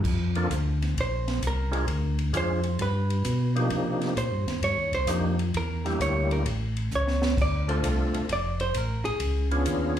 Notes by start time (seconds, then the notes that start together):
0.04 F2, kick, crash
0.35 A#3 C4 D4 F4 A4, ride
0.50 D2, kick, hi-hat pedal, ride
0.82 snare, ride
0.96 A#1, kick, ride
1.01 C5
1.28 snare, ride
1.41 C2, kick, hi-hat pedal, ride
1.47 A#4
1.71 G#3 C4 D4 F4 G#4, ride
1.87 D2, kick, ride
2.19 ride
2.33 F2 G#3 C4 D4 F4 G#4, kick, hi-hat pedal, ride
2.37 C5
2.63 ride
2.79 G2 B4, kick, ride
3.10 ride
3.25 B2, kick, hi-hat pedal, ride
3.56 F3 A#3 D4 D#4 G4, ride
3.70 C3, kick, ride
4.01 snare, ride
4.16 A#2 C5, kick, hi-hat pedal, ride
4.31 G2
4.46 D#2, snare, ride
4.62 G2 C#5, kick, ride
4.76 D#2
4.92 C2 C5, ride
5.07 F2 F3 A#3 D4 D#4 G4, kick, hi-hat pedal, ride
5.39 ride
5.54 E2 A#4, kick, ride
5.85 G3 A#3 D4 E4 G4, snare, ride
5.99 D2 C#5, kick, hi-hat pedal, ride
6.31 A#4, ride
6.45 A1, kick, ride
6.77 ride
6.91 C#2, hi-hat pedal
6.95 C#5
7.07 snare
7.22 snare
7.37 D2, kick, crash
7.42 D5
7.68 A3 C4 D4 F4 A4 C5, ride
7.83 C2, kick, hi-hat pedal, ride
8.14 C2, ride
8.29 F1 D5, kick, ride
8.60 C5, ride
8.74 A1 A#4, kick, hi-hat pedal, ride
9.05 A1 G#4, ride
9.20 C#2, kick, ride
9.51 B3 C#4 D4 F4 G#4, ride
9.65 D#2, kick, hi-hat pedal, ride
9.97 ride